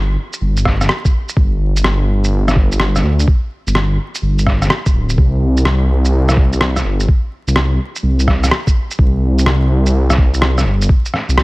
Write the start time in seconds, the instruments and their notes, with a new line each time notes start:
Already playing: detuned saw bass G1
0.33 shaker
0.41 detuned saw bass G1
0.57 shaker
0.65 kick, cross-stick
0.81 cross-stick, shaker
0.89 cross-stick
1.05 kick, shaker
1.29 shaker
1.37 detuned saw bass G1, kick
1.76 shaker
1.84 cross-stick
2.24 shaker
2.48 cross-stick, shaker
2.56 kick
2.72 shaker
2.80 cross-stick
2.96 cross-stick, shaker
3.03 detuned saw bass D2
3.20 shaker
3.28 kick
3.67 detuned saw bass G1, shaker
3.75 cross-stick
4.15 shaker
4.22 detuned saw bass G1
4.38 shaker
4.46 kick, cross-stick
4.62 cross-stick, shaker
4.70 cross-stick
4.86 kick, shaker
4.94 detuned saw bass D1
5.09 shaker
5.18 detuned saw bass C2, kick
5.57 shaker
5.65 cross-stick
6.05 shaker
6.29 cross-stick, shaker
6.37 kick
6.53 shaker
6.61 cross-stick
6.76 cross-stick, shaker
6.84 detuned saw bass G1
7.00 shaker
7.08 kick
7.47 detuned saw bass C2, shaker
7.56 cross-stick
7.96 shaker
8.03 detuned saw bass C2
8.20 shaker
8.27 kick, cross-stick
8.44 cross-stick, shaker
8.51 cross-stick
8.67 kick, shaker
8.91 shaker
8.99 detuned saw bass C2, kick
9.39 shaker
9.46 cross-stick
9.86 shaker
10.10 cross-stick, shaker
10.18 kick
10.34 shaker
10.42 cross-stick
10.58 cross-stick, shaker
10.65 detuned saw bass G1
10.82 shaker
10.89 kick
11.05 shaker
11.14 cross-stick
11.29 detuned saw bass C2, shaker
11.38 cross-stick